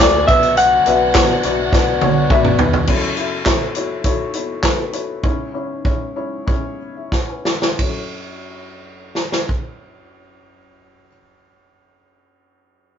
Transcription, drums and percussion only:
0.00 kick, snare, clap, closed hi-hat
0.28 kick, closed hi-hat
0.43 closed hi-hat
0.57 closed hi-hat
0.86 closed hi-hat
1.15 kick, snare, clap, closed hi-hat
1.43 closed hi-hat
1.73 kick, snare
2.01 high tom
2.30 kick, mid tom
2.45 mid tom
2.59 floor tom
2.73 floor tom
2.87 kick, crash
3.17 closed hi-hat
3.46 kick, snare, clap, closed hi-hat
3.75 closed hi-hat
4.04 kick, closed hi-hat
4.34 closed hi-hat
4.63 kick, snare, clap, closed hi-hat
4.93 closed hi-hat
5.24 kick
5.85 kick
6.48 kick
7.12 kick, snare
7.45 snare
7.62 snare
7.79 kick, ride
9.15 snare
9.32 snare
9.49 kick

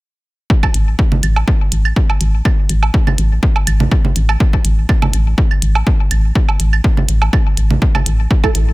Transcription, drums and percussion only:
0.50 kick
0.63 kick, claves, low woodblock
0.74 closed hi-hat
0.99 kick
1.12 low conga
1.23 closed hi-hat, claves
1.36 low woodblock
1.48 kick
1.72 closed hi-hat
1.85 claves
1.96 kick
2.10 low woodblock
2.21 closed hi-hat
2.45 kick, claves
2.69 closed hi-hat
2.83 low woodblock
2.94 kick
3.07 low conga, claves
3.18 closed hi-hat
3.43 kick
3.56 low woodblock
3.67 closed hi-hat, claves
3.80 low conga
3.92 kick
4.05 low conga
4.16 closed hi-hat
4.29 claves, low woodblock
4.40 kick
4.53 kick
4.65 closed hi-hat
4.89 kick, claves
5.02 low conga, low woodblock
5.13 closed hi-hat
5.38 kick
5.51 claves
5.62 closed hi-hat
5.75 low woodblock
5.87 kick
6.11 closed hi-hat, claves
6.35 kick
6.49 low woodblock
6.60 closed hi-hat
6.73 claves
6.84 kick
6.97 low conga
7.09 closed hi-hat
7.22 low woodblock
7.33 kick, claves
7.57 closed hi-hat
7.71 low conga
7.82 kick
7.95 low conga, claves, low woodblock
8.06 closed hi-hat
8.31 kick
8.44 kick, claves, low woodblock
8.55 closed hi-hat

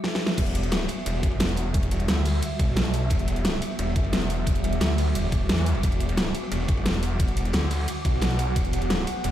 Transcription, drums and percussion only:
0.04 snare
0.15 snare
0.27 snare
0.37 kick, closed hi-hat, crash, ride
0.46 closed hi-hat
0.55 closed hi-hat, ride
0.63 closed hi-hat, ride
0.72 snare, closed hi-hat, ride
0.81 snare
0.88 open hi-hat, ride
0.98 snare
1.06 closed hi-hat, ride
1.15 snare
1.23 kick, closed hi-hat, ride
1.31 ride
1.40 snare, closed hi-hat, ride
1.49 closed hi-hat
1.56 open hi-hat, ride
1.74 kick, closed hi-hat, ride
1.83 closed hi-hat, ride
1.91 closed hi-hat, ride
2.00 closed hi-hat
2.08 snare, closed hi-hat, ride
2.25 open hi-hat
2.42 closed hi-hat, ride
2.59 kick, closed hi-hat, ride
2.68 snare
2.76 snare, closed hi-hat, ride
2.85 closed hi-hat
2.94 open hi-hat, ride
3.10 kick, closed hi-hat, ride
3.19 closed hi-hat
3.28 closed hi-hat, ride
3.36 closed hi-hat, ride
3.45 snare, closed hi-hat, ride
3.53 snare
3.62 open hi-hat, ride
3.70 snare
3.79 closed hi-hat, ride
3.88 snare
3.96 kick, closed hi-hat, ride
4.04 ride
4.13 snare, closed hi-hat, ride
4.21 closed hi-hat
4.30 open hi-hat, ride
4.46 kick, closed hi-hat, ride
4.55 closed hi-hat, ride
4.64 closed hi-hat, ride
4.73 closed hi-hat
4.81 snare, closed hi-hat, ride
4.98 open hi-hat
5.15 closed hi-hat, ride
5.32 kick, closed hi-hat, ride
5.49 snare, closed hi-hat, ride
5.58 closed hi-hat, ride
5.66 open hi-hat
5.75 ride
5.83 kick, closed hi-hat, ride
5.92 closed hi-hat
6.00 closed hi-hat, ride
6.09 closed hi-hat, ride
6.17 snare, closed hi-hat, ride
6.27 snare
6.35 open hi-hat, ride
6.42 snare
6.52 closed hi-hat, ride
6.59 snare
6.68 kick, closed hi-hat, ride
6.77 ride
6.86 snare, closed hi-hat, ride
6.94 closed hi-hat
7.03 open hi-hat, ride
7.20 kick, closed hi-hat, ride
7.27 closed hi-hat, ride
7.37 closed hi-hat, ride
7.45 closed hi-hat
7.53 snare, closed hi-hat, ride
7.70 open hi-hat
7.88 closed hi-hat, ride
8.05 kick, closed hi-hat, ride
8.14 snare
8.21 snare, closed hi-hat, ride
8.31 closed hi-hat
8.39 open hi-hat, ride
8.56 kick, closed hi-hat, ride
8.65 closed hi-hat
8.73 closed hi-hat, ride
8.82 closed hi-hat, ride
8.90 snare, closed hi-hat, ride
8.98 snare
9.07 open hi-hat, ride
9.16 snare
9.24 closed hi-hat, ride

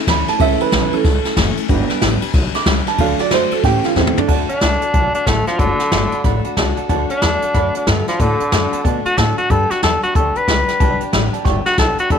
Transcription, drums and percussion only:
0.07 kick, snare, ride
0.28 snare, ride
0.40 kick, ride
0.60 ride
0.72 snare, ride
0.93 ride
1.05 kick, snare, ride
1.25 snare, ride
1.37 kick, snare, ride
1.57 ride
1.69 kick, ride
1.89 snare, ride
2.02 snare, ride
2.22 ride
2.34 kick, snare, ride
2.54 snare, ride
2.66 kick, snare, ride
2.87 snare, ride
2.98 kick, ride
3.19 snare, ride
3.31 snare, ride
3.51 ride
3.64 kick, snare, ride
3.84 snare, ride
3.96 kick, snare
4.07 mid tom
4.18 floor tom
4.28 kick, crash
4.49 closed hi-hat
4.61 snare, closed hi-hat
4.82 closed hi-hat
4.94 kick, closed hi-hat
5.14 closed hi-hat
5.27 kick, snare, closed hi-hat
5.47 snare, closed hi-hat
5.59 kick, closed hi-hat
5.79 snare, closed hi-hat
5.92 snare, closed hi-hat
6.12 closed hi-hat
6.24 kick, snare, closed hi-hat
6.44 closed hi-hat
6.57 kick, snare, closed hi-hat
6.77 closed hi-hat
6.89 kick, closed hi-hat
7.10 closed hi-hat
7.22 snare, closed hi-hat
7.42 closed hi-hat
7.54 kick, snare, closed hi-hat
7.75 closed hi-hat
7.87 kick, snare, closed hi-hat
8.08 snare, closed hi-hat
8.20 kick, closed hi-hat
8.40 closed hi-hat
8.52 snare, closed hi-hat
8.73 closed hi-hat
8.85 kick, closed hi-hat
9.05 closed hi-hat
9.18 kick, snare, closed hi-hat
9.38 closed hi-hat
9.50 kick, closed hi-hat
9.71 snare, closed hi-hat
9.83 snare, closed hi-hat
10.03 closed hi-hat
10.15 kick, closed hi-hat
10.36 closed hi-hat
10.48 kick, snare, closed hi-hat
10.68 snare, closed hi-hat
10.80 kick, closed hi-hat
11.01 closed hi-hat
11.13 snare, closed hi-hat
11.34 closed hi-hat
11.45 kick, snare, closed hi-hat
11.66 snare, closed hi-hat
11.78 kick, snare, closed hi-hat
11.98 closed hi-hat
12.10 kick, closed hi-hat

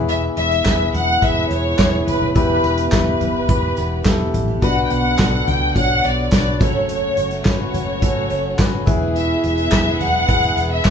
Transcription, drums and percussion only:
0.09 closed hi-hat
0.37 closed hi-hat
0.51 closed hi-hat
0.65 kick, snare, clap, closed hi-hat
0.94 closed hi-hat, floor tom
1.22 kick, closed hi-hat
1.51 closed hi-hat
1.79 kick, snare, clap, closed hi-hat
2.07 closed hi-hat, floor tom
2.22 floor tom
2.35 kick, closed hi-hat
2.64 closed hi-hat
2.78 closed hi-hat
2.92 kick, snare, clap, closed hi-hat
3.21 closed hi-hat, floor tom
3.49 kick, closed hi-hat
3.77 closed hi-hat
4.05 kick, snare, clap, closed hi-hat
4.34 closed hi-hat, floor tom
4.48 floor tom
4.62 kick, closed hi-hat
4.90 closed hi-hat
5.18 kick, snare, clap, closed hi-hat
5.48 closed hi-hat, floor tom
5.76 kick, closed hi-hat
6.04 closed hi-hat
6.32 kick, snare, clap, closed hi-hat
6.61 kick, snare, closed hi-hat, floor tom
6.89 closed hi-hat
7.17 closed hi-hat
7.31 closed hi-hat
7.45 kick, snare, clap, closed hi-hat
7.74 closed hi-hat, floor tom
8.02 kick, closed hi-hat
8.30 closed hi-hat
8.59 kick, snare, clap, closed hi-hat
8.87 kick, closed hi-hat, floor tom
9.16 closed hi-hat
9.44 closed hi-hat
9.58 closed hi-hat
9.72 kick, snare, clap, closed hi-hat
10.00 closed hi-hat, floor tom
10.29 kick, closed hi-hat
10.43 closed hi-hat
10.57 closed hi-hat
10.85 kick, snare, clap, closed hi-hat

